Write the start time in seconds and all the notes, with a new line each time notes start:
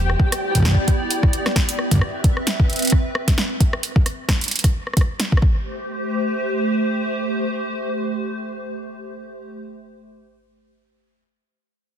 Already playing: E1 A3 G4 C5 G5
0.10 cross-stick
0.20 B3 E4 D5, kick
0.32 cross-stick, closed hi-hat
0.55 kick, closed hi-hat
0.57 kick
0.60 kick
0.62 kick
0.65 kick, cross-stick, snare
0.68 kick
0.71 kick
0.75 kick
0.88 kick, closed hi-hat
1.10 closed hi-hat
1.23 kick, cross-stick
1.33 closed hi-hat
1.46 cross-stick, snare
1.56 kick, snare
1.69 closed hi-hat
1.79 cross-stick
1.91 kick, closed hi-hat
1.93 kick
1.95 kick
1.97 kick
1.99 C4 B4 E5, kick, cross-stick
2.24 kick, closed hi-hat
2.37 cross-stick
2.47 snare, closed hi-hat
2.60 kick
2.70 closed hi-hat
2.73 closed hi-hat
2.76 closed hi-hat
2.79 closed hi-hat
2.82 closed hi-hat
2.85 closed hi-hat
2.87 closed hi-hat
2.90 kick, cross-stick, closed hi-hat
3.15 cross-stick
3.28 kick, snare, closed hi-hat
3.38 snare
3.60 kick, closed hi-hat
3.73 cross-stick
3.83 closed hi-hat
3.96 kick
4.06 cross-stick, closed hi-hat
4.29 kick, cross-stick, snare
4.41 closed hi-hat
4.44 closed hi-hat
4.48 closed hi-hat
4.51 closed hi-hat
4.56 closed hi-hat
4.59 closed hi-hat
4.64 kick, cross-stick, closed hi-hat
4.87 cross-stick
4.93 kick, cross-stick, closed hi-hat
5.01 cross-stick
5.20 cross-stick, snare, closed hi-hat
5.32 kick
5.37 cross-stick
5.42 A3 G4 C5, kick